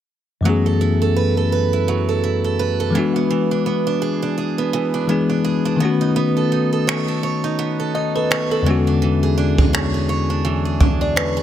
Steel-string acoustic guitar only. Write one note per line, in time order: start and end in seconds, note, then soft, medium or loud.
0.45 1.87 F#3 medium
0.66 1.00 A4 medium
0.81 1.73 E4 medium
1.02 1.36 A4 medium
1.16 1.52 B4 medium
1.37 2.07 A4 medium
1.52 2.59 B4 medium
1.73 2.23 E4 medium
1.88 2.95 F#3 medium
2.09 2.43 A4 medium
2.24 3.51 E4 medium
2.44 2.79 A4 medium
2.59 6.09 B4 medium
2.80 3.03 A4 medium
2.95 3.29 E3 medium
3.16 3.66 B3 medium
3.31 4.72 E3 medium
3.51 3.86 D4 medium
3.66 4.58 B3 medium
3.87 4.21 D4 medium
4.02 4.36 G#4 medium
4.22 4.93 D4 medium
4.38 5.43 G#4 medium
4.58 5.08 B3 medium
4.73 5.89 E3 medium
4.94 5.28 D4 medium
5.09 5.80 B3 medium
5.30 5.64 D4 medium
5.45 5.89 G#4 medium
5.65 5.89 D4 medium
5.80 6.16 B3 medium
6.01 6.51 D#4 medium
6.16 7.58 B3 medium
6.37 6.71 A4 medium
6.52 7.43 D#4 medium
6.73 7.07 A4 medium
6.87 7.23 C#5 medium
7.08 7.78 A4 medium
7.23 8.30 C#5 medium
7.44 7.94 D#4 medium
7.59 9.76 B3 medium
7.80 8.14 A4 medium
7.95 8.75 D#4 medium
8.15 8.50 A4 medium
8.31 8.90 C#5 medium
8.51 8.75 A4 medium
8.66 9.02 E3 medium
8.87 9.36 D4 medium
9.02 10.44 E3 medium
9.23 9.58 G#4 medium
9.38 10.29 D4 medium
9.58 9.94 G#4 medium
9.73 10.09 C#5 medium
9.94 10.65 G#4 medium
10.09 11.16 C#5 medium
10.30 10.79 D4 medium
10.45 11.43 E3 medium
10.65 11.01 G#4 medium
10.80 11.43 D4 medium
11.01 11.36 G#4 medium
11.16 11.43 C#5 medium
11.37 11.43 G#4 medium